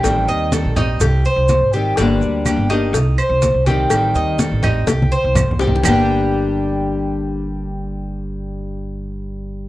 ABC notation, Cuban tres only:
X:1
M:4/4
L:1/8
Q:1/4=124
K:Gm
V:1 name="Cuban tres"
G e A E G c2 G | D2 G E2 c2 G- | G e A E G c2 G | [G,DG]8- |
[G,DG]8 |]